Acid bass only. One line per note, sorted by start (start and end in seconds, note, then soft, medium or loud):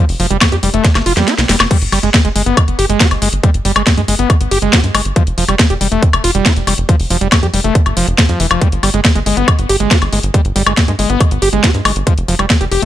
0.20 0.26 F3 medium
0.31 0.37 G3 medium
0.52 0.56 G4 medium
0.63 0.69 G3 medium
0.74 0.84 A3 loud
1.06 1.13 F4 loud
1.17 1.29 G3 medium
1.28 1.34 F4 medium
1.49 1.56 G3 medium
1.71 1.77 G3 loud
1.92 1.99 G3 medium
2.03 2.10 G#3 medium
2.25 2.29 G#3 medium
2.36 2.42 G#3 medium
2.46 2.56 B3 loud
2.79 2.85 G4 loud
2.90 3.02 G#3 medium
3.00 3.07 G4 medium
3.22 3.28 G#3 medium
3.44 3.50 G3 loud
3.65 3.72 G3 medium
3.76 3.82 G#3 medium
3.97 4.01 G#3 medium
4.08 4.15 G#3 medium
4.19 4.29 B3 loud
4.51 4.58 G4 loud
4.62 4.74 G#3 medium
4.73 4.80 G4 medium
4.95 5.01 G#3 medium
5.16 5.23 F3 loud
5.38 5.44 F3 medium
5.49 5.55 G3 medium
5.70 5.74 G4 medium
5.81 5.87 G3 medium
5.92 6.02 A3 loud
6.24 6.31 F4 loud
6.35 6.47 G3 medium
6.46 6.52 F4 medium
6.67 6.74 G3 medium
6.89 6.95 F3 loud
7.10 7.17 F3 medium
7.21 7.28 G3 medium
7.43 7.47 G4 medium
7.54 7.60 G3 medium
7.64 7.74 A3 loud
7.97 8.07 F3 loud
8.29 8.39 F3 medium
8.40 8.46 E3 medium
8.51 8.60 F3 medium
8.61 8.68 G3 loud
8.83 8.90 G3 medium
8.94 9.00 G#3 medium
9.15 9.19 G#3 medium
9.26 9.36 G#3 loud
9.37 9.47 B3 loud
9.69 9.76 G4 loud
9.80 9.92 G#3 medium
9.91 9.98 G4 medium
10.13 10.19 G#3 medium
10.34 10.41 G3 loud
10.56 10.62 G3 medium
10.66 10.73 G#3 medium
10.88 10.92 G#3 medium
10.99 11.09 G#3 loud
11.10 11.19 B3 loud
11.42 11.49 G4 loud
11.53 11.65 G#3 medium
11.64 11.70 G4 medium
11.85 11.92 G#3 medium
12.07 12.13 F3 loud
12.28 12.35 F3 medium
12.39 12.46 G3 medium
12.61 12.65 G4 medium
12.72 12.81 G4 loud